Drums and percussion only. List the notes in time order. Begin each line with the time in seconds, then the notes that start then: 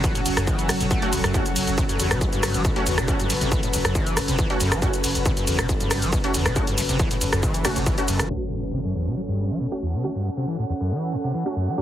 0.04 kick, closed hi-hat, shaker
0.15 closed hi-hat, shaker
0.26 open hi-hat, ride, shaker
0.37 cross-stick, closed hi-hat, shaker
0.47 kick, closed hi-hat, shaker
0.59 closed hi-hat, shaker
0.69 cross-stick, open hi-hat, ride, shaker
0.81 closed hi-hat, shaker
0.91 kick, closed hi-hat, shaker
1.02 closed hi-hat
1.13 open hi-hat, ride, shaker
1.24 cross-stick, closed hi-hat, shaker
1.34 kick, closed hi-hat, shaker
1.46 closed hi-hat, shaker
1.56 open hi-hat, ride, shaker
1.67 closed hi-hat, shaker
1.78 kick, closed hi-hat, shaker
1.89 closed hi-hat, shaker
2.00 open hi-hat, ride, shaker
2.11 cross-stick, closed hi-hat, shaker
2.21 kick, closed hi-hat, shaker
2.33 closed hi-hat, shaker
2.43 cross-stick, open hi-hat, ride, shaker
2.54 closed hi-hat, shaker
2.65 kick, closed hi-hat, shaker
2.76 closed hi-hat
2.86 open hi-hat, ride, shaker
2.98 cross-stick, closed hi-hat, shaker
3.08 kick, closed hi-hat, shaker
3.20 closed hi-hat, shaker
3.30 open hi-hat, ride, shaker
3.41 closed hi-hat, shaker
3.52 kick, closed hi-hat, shaker
3.63 closed hi-hat, shaker
3.73 open hi-hat, ride, shaker
3.85 cross-stick, closed hi-hat, shaker
3.95 kick, closed hi-hat, shaker
4.07 closed hi-hat, shaker
4.17 cross-stick, open hi-hat, ride, shaker
4.28 closed hi-hat, shaker
4.39 kick, closed hi-hat, shaker
4.50 closed hi-hat
4.60 open hi-hat, ride, shaker
4.72 cross-stick, closed hi-hat, shaker
4.82 kick, closed hi-hat, shaker
4.94 closed hi-hat, shaker
5.04 open hi-hat, ride, shaker
5.15 closed hi-hat, shaker
5.26 kick, closed hi-hat, shaker
5.37 closed hi-hat, shaker
5.47 open hi-hat, ride, shaker
5.59 cross-stick, closed hi-hat, shaker
5.69 kick, closed hi-hat, shaker
5.80 closed hi-hat, shaker
5.91 cross-stick, open hi-hat, ride, shaker
6.02 closed hi-hat, shaker
6.13 kick, closed hi-hat, shaker
6.24 closed hi-hat
6.34 open hi-hat, ride, shaker
6.46 cross-stick, closed hi-hat, shaker
6.56 kick, closed hi-hat, shaker
6.67 closed hi-hat, shaker
6.78 open hi-hat, ride, shaker
6.89 closed hi-hat, shaker
6.99 kick, closed hi-hat, shaker
7.11 closed hi-hat, shaker
7.21 open hi-hat, ride, shaker
7.33 cross-stick, closed hi-hat, shaker
7.43 kick, closed hi-hat, shaker
7.54 closed hi-hat, shaker
7.65 cross-stick, open hi-hat, ride, shaker
7.76 closed hi-hat, shaker
7.86 kick, closed hi-hat, shaker
7.98 closed hi-hat, shaker
8.08 open hi-hat, ride, shaker
8.20 cross-stick, closed hi-hat, shaker
8.30 crash